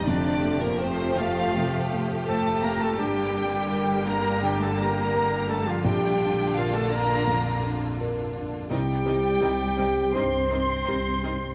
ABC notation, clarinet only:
X:1
M:4/4
L:1/16
Q:1/4=84
K:Bb
V:1 name="Clarinet"
D3 B, C2 F4 z2 A2 B A | G6 B2 G A B4 A F | G4 F A B4 z6 | G8 c8 |]